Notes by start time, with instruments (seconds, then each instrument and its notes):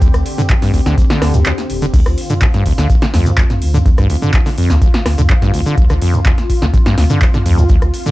Already playing: analog synth pad D3 C4 G4
0.02 sub bass D2, acid bass D2, kick, closed hi-hat, shaker
0.14 sub bass D2, cross-stick, closed hi-hat, shaker
0.26 open hi-hat
0.38 acid bass D3, closed hi-hat, mid tom, shaker
0.50 acid bass G2, kick, clap, closed hi-hat, shaker
0.62 acid bass G2, snare, open hi-hat, shaker
0.74 acid bass D2, kick, open hi-hat
0.86 sub bass D2, acid bass D3, snare, closed hi-hat, shaker
0.98 acid bass D1, kick, closed hi-hat, shaker
1.10 acid bass D3, snare, closed hi-hat, shaker
1.22 sub bass D2, cross-stick, snare, open hi-hat
1.34 sub bass D2, acid bass D2, closed hi-hat, mid tom, shaker
1.46 acid bass D2, clap, closed hi-hat, shaker
1.58 snare, closed hi-hat, shaker
1.70 sub bass D1, open hi-hat
1.82 acid bass D3, closed hi-hat, shaker
1.94 acid bass D2, sub bass D2, analog synth pad F4, kick, closed hi-hat, crash, shaker
2.06 sub bass D2, cross-stick, closed hi-hat, shaker
2.18 open hi-hat
2.30 acid bass D3, closed hi-hat, mid tom, shaker
2.41 acid bass G2, kick, clap, closed hi-hat, shaker
2.54 acid bass G2, snare, closed hi-hat, shaker
2.66 acid bass D2, kick, open hi-hat
2.78 sub bass D2, acid bass D3, snare, closed hi-hat, shaker
2.90 acid bass D1, kick, closed hi-hat, shaker
3.02 acid bass D3, snare, closed hi-hat, shaker
3.14 sub bass D2, acid bass F2, snare, open hi-hat
3.26 acid bass D2, closed hi-hat, mid tom, shaker
3.38 acid bass D2, kick, clap, closed hi-hat, shaker
3.50 snare, closed hi-hat, mid tom, shaker
3.62 sub bass D2, open hi-hat
3.74 acid bass D3, mid tom, shaker
3.86 sub bass D2, acid bass G2, kick, closed hi-hat, shaker
3.98 sub bass D2, acid bass G2, cross-stick, closed hi-hat, shaker
4.10 acid bass D2, open hi-hat
4.22 acid bass D3, closed hi-hat, mid tom, shaker
4.34 acid bass D1, kick, clap, closed hi-hat, shaker
4.46 acid bass D3, snare, open hi-hat, shaker
4.58 acid bass F2, open hi-hat
4.70 sub bass D2, acid bass D2, snare, closed hi-hat, shaker
4.82 acid bass D2, kick, closed hi-hat, shaker
4.94 snare, closed hi-hat, shaker
5.06 sub bass D2, cross-stick, snare, open hi-hat
5.18 sub bass D2, acid bass D3, closed hi-hat, mid tom, shaker
5.30 acid bass G2, kick, clap, closed hi-hat, shaker
5.42 acid bass G2, kick, snare, closed hi-hat, shaker
5.54 sub bass D2, acid bass D2, open hi-hat
5.66 acid bass D3, closed hi-hat, shaker
5.77 sub bass D2, kick, closed hi-hat, shaker
5.89 sub bass D2, acid bass D3, cross-stick, closed hi-hat, shaker
6.02 acid bass F2, open hi-hat
6.14 acid bass D2, closed hi-hat, mid tom, shaker
6.26 acid bass D2, kick, clap, closed hi-hat, shaker
6.38 snare, closed hi-hat, shaker
6.50 kick, open hi-hat
6.62 sub bass D2, acid bass D3, snare, shaker
6.74 acid bass G2, kick, closed hi-hat, shaker
6.86 acid bass G2, snare, closed hi-hat, shaker
6.98 sub bass D2, acid bass D2, snare, open hi-hat
7.09 acid bass D3, closed hi-hat, mid tom, shaker
7.22 acid bass D1, kick, clap, closed hi-hat, shaker
7.34 acid bass D3, snare, closed hi-hat, mid tom, shaker
7.46 sub bass D2, acid bass F2, open hi-hat
7.58 acid bass D2, closed hi-hat, mid tom, shaker
7.69 sub bass D2, acid bass D2, kick, closed hi-hat, shaker
7.82 sub bass D2, cross-stick, closed hi-hat, shaker
7.94 open hi-hat
8.06 acid bass D3, closed hi-hat, mid tom, shaker